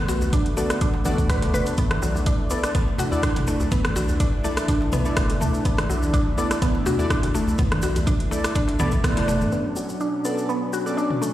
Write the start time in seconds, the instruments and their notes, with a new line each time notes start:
Already playing: analog synth pad D3 A3 B3
0.08 analog synth bass B1, synth arpeggio sound F#4, djembe slap, muted conga, cabasa
0.21 djembe tone, djembe bass, cabasa
0.33 synth arpeggio sound D4, kick, closed hi-hat, muted conga, cabasa
0.46 closed hi-hat
0.57 synth arpeggio sound A3, synth keys B3 D4 F#4 A4 D5, muted conga, djembe tone, cabasa
0.70 cross-stick, closed hi-hat, cabasa
0.81 analog synth bass B1, synth arpeggio sound D4, kick, closed hi-hat, cabasa
0.94 muted conga, djembe slap
1.05 analog synth bass A1, synth keys B3 D4 F#4 A4 D5, synth arpeggio sound F#4, mid tom, djembe tone, high conga, low conga, cabasa
1.18 analog synth bass D2, kick, closed hi-hat, muted conga, cabasa
1.30 synth arpeggio sound B4, kick, cross-stick, closed hi-hat, djembe tone, cabasa
1.42 closed hi-hat, djembe slap, muted conga, low conga
1.53 analog synth bass F#1, synth arpeggio sound B4, mid tom, djembe slap, low conga, cabasa
1.66 closed hi-hat, cabasa
1.77 analog synth bass B1, analog synth pad E3 D4, synth arpeggio sound B3, kick, closed hi-hat, muted conga, cabasa
1.91 cross-stick, closed hi-hat, high conga
2.02 analog synth bass B1, synth arpeggio sound F#3, muted conga, cabasa
2.15 djembe tone, high conga, cabasa
2.26 synth arpeggio sound D4, kick, closed hi-hat, muted conga, cabasa
2.50 synth arpeggio sound B3, synth keys E4 A4 D5, muted conga, djembe tone, cabasa
2.63 cross-stick, closed hi-hat, cabasa
2.75 synth arpeggio sound B3, kick, closed hi-hat, high conga, cabasa
2.88 muted conga
2.98 synth arpeggio sound F#4, djembe slap, low conga, cabasa
3.12 synth keys E4 A4 D5, muted conga, djembe bass, cabasa
3.23 synth arpeggio sound D4, kick, cross-stick, closed hi-hat, cabasa
3.36 analog synth bass B1, closed hi-hat, mid tom, muted conga, djembe slap, low conga
3.47 analog synth bass F#1, synth arpeggio sound A3, djembe slap, djembe tone, cabasa
3.60 analog synth bass B1, djembe tone, djembe bass, cabasa
3.71 analog synth bass B1, synth arpeggio sound B3, kick, closed hi-hat, muted conga, low conga, djembe bass, cabasa
3.85 cross-stick, closed hi-hat, high conga
3.96 analog synth bass B1, synth arpeggio sound F#4, djembe slap, muted conga, cabasa
4.08 djembe tone, djembe bass, cabasa
4.20 synth arpeggio sound D4, kick, closed hi-hat, muted conga, cabasa
4.44 synth arpeggio sound A3, synth keys E4 A4 D5, muted conga, djembe tone, cabasa
4.57 cross-stick, closed hi-hat, cabasa
4.68 analog synth bass B1, synth arpeggio sound D4, kick, closed hi-hat, cabasa
4.81 djembe slap, muted conga
4.92 synth arpeggio sound B3, mid tom, high conga, djembe tone, low conga, cabasa
5.05 synth keys E4 A4 D5, muted conga, cabasa
5.16 analog synth bass F#1, synth arpeggio sound B3, kick, cross-stick, closed hi-hat, djembe tone, cabasa
5.29 closed hi-hat, djembe slap, muted conga, low conga
5.40 analog synth bass D2, synth arpeggio sound A3, mid tom, djembe slap, low conga, cabasa
5.54 cabasa
5.65 analog synth bass B1, synth arpeggio sound B3, kick, closed hi-hat, muted conga, cabasa
5.77 cross-stick, closed hi-hat, high conga
5.89 analog synth bass B1, synth arpeggio sound F#3, muted conga, cabasa
6.02 high conga, djembe tone, cabasa
6.13 synth arpeggio sound D4, kick, closed hi-hat, muted conga, cabasa
6.38 synth arpeggio sound B3, synth keys E4 A4 D5, muted conga, djembe tone, cabasa
6.51 cross-stick, closed hi-hat, cabasa
6.62 synth arpeggio sound B3, kick, closed hi-hat, high conga, cabasa
6.75 muted conga
6.86 synth arpeggio sound F#4, djembe slap, low conga, cabasa
6.99 synth keys E4 A4 D5, muted conga, djembe bass, cabasa
7.10 synth arpeggio sound D4, kick, cross-stick, closed hi-hat, cabasa
7.23 analog synth bass B1, closed hi-hat, mid tom, muted conga, djembe slap, low conga
7.34 analog synth bass F#1, synth arpeggio sound A3, djembe slap, djembe tone, cabasa
7.47 analog synth bass B1, djembe tone, djembe bass, cabasa
7.58 analog synth bass B1, synth arpeggio sound B3, kick, closed hi-hat, muted conga, djembe bass, low conga, cabasa
7.72 cross-stick, closed hi-hat, high conga
7.82 analog synth bass B1, synth arpeggio sound F#4, muted conga, djembe slap, cabasa
7.96 closed hi-hat, djembe tone, high conga, djembe bass, cabasa
8.07 synth arpeggio sound D4, kick, closed hi-hat, muted conga, cabasa
8.20 closed hi-hat
8.31 synth arpeggio sound A3, synth keys E4 A4 D5, muted conga, djembe tone, cabasa
8.44 cross-stick, closed hi-hat, cabasa
8.55 analog synth bass B1, synth arpeggio sound D4, kick, closed hi-hat, cabasa
8.68 closed hi-hat, djembe slap, muted conga
8.79 synth arpeggio sound B3, synth keys E4 A4 D5, mid tom, djembe tone, high conga, low conga, cabasa
8.92 kick, muted conga, cabasa
9.04 synth arpeggio sound B3, kick, cross-stick, closed hi-hat, djembe tone, cabasa
9.17 closed hi-hat, high tom, djembe slap, muted conga, low conga
9.28 analog synth bass F#1, synth arpeggio sound A3, mid tom, djembe slap, low conga, cabasa
9.41 mid tom, high conga, cabasa
9.52 analog synth pad B2 F#3 C#4 D4, synth arpeggio sound B3, cabasa
9.76 synth arpeggio sound F#3, cabasa
9.89 cabasa
10.00 synth arpeggio sound D4, cabasa
10.25 synth keys B3 D4 F#4 A4 D5, synth arpeggio sound B3, cabasa
10.38 cabasa
10.49 synth arpeggio sound B3, cabasa
10.73 synth arpeggio sound F#4, cabasa
10.86 synth keys B3 D4 F#4 A4 D5, cabasa
10.97 synth arpeggio sound D4, cabasa
11.10 mid tom
11.22 synth arpeggio sound A3, cabasa